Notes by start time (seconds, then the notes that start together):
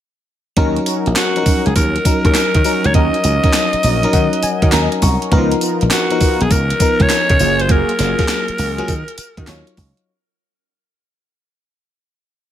0.57 D#2 F#3 C#4 D#4 F#4 A#4, kick, closed hi-hat
0.76 closed hi-hat
0.86 C#4 D#4 F#4 A#4, closed hi-hat, tambourine
1.06 A#1, closed hi-hat
1.16 F#4, snare, clap, closed hi-hat, tambourine
1.36 F3 C#4 D#4 A#4, closed hi-hat
1.43 F#3 C#4 D#4 F#4 A#4, muted slap bass stroke, kick, open hi-hat, tambourine
1.66 C#2 G#4, closed hi-hat
1.76 D#2 A#4, kick, closed hi-hat, tambourine
1.96 closed hi-hat
2.05 F#3 C#4 D#4 A#4, kick, closed hi-hat, tambourine
2.25 D#2 C#4 D#4 F#4 A#4, kick, closed hi-hat
2.34 snare, clap, closed hi-hat, tambourine
2.54 D#3, kick, closed hi-hat
2.64 F#3 C#4 D#4 F#4 A#4, open hi-hat, tambourine
2.84 C#2 C#5, closed hi-hat
2.94 D#2 C#4 D#4 F#4 A#4 D#5, kick, closed hi-hat
3.14 closed hi-hat
3.24 C#2 C#4 D#4 F#4 A#4, closed hi-hat, tambourine
3.44 F#3 C#4 D#4 A#4, kick, closed hi-hat
3.53 snare, clap, closed hi-hat, tambourine
3.73 muted slap bass stroke, closed hi-hat
3.83 A#1 C#4 D#4 F#4 A#4 D#5, open hi-hat, tambourine
4.03 F#3 C#4 D#4 A#4, closed hi-hat
4.13 D#3 F#5, kick, closed hi-hat, tambourine
4.33 closed hi-hat
4.42 G#5, muted slap bass stroke, closed hi-hat, tambourine
4.62 D#3 C#4 D#4 F#4 A#4, kick, closed hi-hat
4.72 D#2 F#3 C#4 D#4 A#4 A#5, snare, clap, closed hi-hat, tambourine
4.92 closed hi-hat
5.02 C2 C#6, kick, open hi-hat, tambourine
5.22 closed hi-hat
5.31 C#2 D#3 B3 D#4 F4 A#4, kick, closed hi-hat
5.38 F3
5.51 closed hi-hat
5.61 B3 D#4 F4 A#4, closed hi-hat, tambourine
5.81 A#1, closed hi-hat
5.90 F#4, snare, clap, closed hi-hat, tambourine
6.10 F3 B3 D#4 A#4, closed hi-hat
6.21 B3 D#4 F4 A#4, muted slap bass stroke, kick, open hi-hat, tambourine
6.41 B1 G#4, closed hi-hat
6.51 C#2 A#4, kick, closed hi-hat, tambourine
6.70 closed hi-hat
6.80 F3 B3 D#4 A#4, kick, closed hi-hat, tambourine
7.00 C#2 B3 D#4 F4 A#4 C#5, kick, closed hi-hat
7.09 snare, clap, closed hi-hat, tambourine
7.29 C#3, kick, closed hi-hat
7.39 F#1 F#3 A#3 F4 F#4 G#4, open hi-hat, tambourine
7.59 C5, closed hi-hat
7.69 A#3 F4 F#4 G#4 A#4, kick, closed hi-hat
7.89 closed hi-hat
7.99 F#1 A#3 F4 F#4 G#4, snare, closed hi-hat, tambourine
8.19 F#3 A#3 F4 G#4, kick, snare, closed hi-hat
8.28 snare, clap, closed hi-hat, tambourine
8.48 muted slap bass stroke, closed hi-hat
8.58 C#2 A#3 F4 F#4 G#4, open hi-hat, tambourine
8.78 F#3 A#3 F4 G#4, closed hi-hat
8.88 D#3, kick, closed hi-hat, tambourine
9.08 closed hi-hat
9.18 muted slap bass stroke, closed hi-hat, tambourine
9.37 D#3 C#4 D#4 F4 F#4, kick, closed hi-hat
9.47 D#2 F#3 D#4 F4 C#5, snare, clap, closed hi-hat, tambourine
9.67 closed hi-hat
9.77 C#2, kick, open hi-hat, tambourine
9.97 closed hi-hat